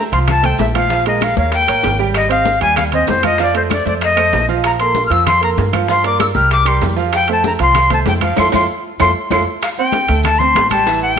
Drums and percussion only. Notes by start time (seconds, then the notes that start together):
0.12 high conga, high timbale, maracas
0.28 high bongo, high conga, low conga, high timbale, claves, maracas
0.43 high bongo, high conga, low conga, high timbale, maracas
0.58 high bongo, low bongo, high conga, low timbale, maracas
0.74 high bongo, high conga, high timbale, claves, maracas
0.90 high bongo, high conga, maracas
1.05 high bongo, high conga, high timbale, maracas
1.21 high bongo, high conga, high timbale, low timbale, claves, maracas
1.37 high conga, maracas
1.52 high bongo, high conga, high timbale, maracas
1.67 high bongo, high conga, high timbale, claves, maracas
1.83 high bongo, low bongo, high conga, low timbale, maracas
1.99 high bongo, high conga, maracas
2.14 high bongo, high conga, high timbale, claves, maracas
2.30 high bongo, high conga, high timbale, maracas
2.45 high bongo, high conga, low timbale, maracas
2.61 high conga, high timbale, maracas
2.76 high bongo, high conga, low conga, high timbale, claves, maracas
2.92 high bongo, high conga, low conga, high timbale, maracas
3.07 high bongo, low bongo, high conga, low timbale, maracas
3.23 high bongo, high conga, high timbale, claves, maracas
3.38 high bongo, high conga, maracas
3.54 high bongo, high conga, high timbale, maracas
3.70 high bongo, high conga, high timbale, low timbale, claves, maracas
3.87 high conga, maracas
4.01 high bongo, high conga, high timbale, maracas
4.17 high bongo, high timbale, claves, maracas
4.32 high bongo, low bongo, high conga, low timbale, maracas
4.48 high bongo, high conga, maracas
4.64 high bongo, high conga, high timbale, claves, maracas
4.79 high bongo, high conga, high timbale, maracas
4.95 high bongo, high conga, low timbale, maracas
5.11 high conga, high timbale, maracas
5.27 high bongo, high conga, low conga, high timbale, claves, maracas
5.42 high bongo, high conga, high timbale, maracas
5.58 high bongo, low bongo, high conga, low timbale, maracas
5.73 high bongo, high conga, high timbale, claves, maracas
5.88 high bongo, high conga, maracas
6.04 high bongo, high conga, high timbale, maracas
6.20 high bongo, high conga, high timbale, low timbale, claves, maracas
6.35 high conga, maracas
6.51 high bongo, high conga, high timbale, maracas
6.66 high bongo, high conga, high timbale, claves, maracas
6.81 high bongo, low bongo, high conga, low timbale, maracas
6.98 high bongo, high conga, maracas
7.13 high bongo, high conga, high timbale, claves, maracas
7.28 high bongo, high conga, high timbale, maracas
7.44 high bongo, high conga, low timbale, maracas
7.59 high conga, high timbale, maracas
7.75 high bongo, high conga, low conga, high timbale, claves, maracas
7.90 high bongo, high conga, low conga, high timbale, maracas
8.06 high bongo, low bongo, high conga, low timbale, maracas
8.21 high bongo, high conga, high timbale, claves, maracas
8.37 low bongo, high conga, high timbale, claves, maracas
8.52 low bongo, high conga, high timbale, claves, maracas
9.00 low bongo, high conga, high timbale, claves, maracas
9.30 low bongo, high conga, high timbale, claves, maracas
9.62 high bongo, high conga, high timbale, claves, maracas
9.77 high conga, maracas
9.92 high bongo, high conga, high timbale, low timbale, maracas
10.08 high conga, high timbale, maracas
10.24 high bongo, high conga, low conga, high timbale, claves, maracas
10.40 high conga, low conga, maracas
10.55 high bongo, low bongo, high conga, high timbale, low timbale, maracas
10.70 high conga, high timbale, claves, maracas
10.86 high bongo, high conga, maracas
11.02 high conga, maracas
11.16 high conga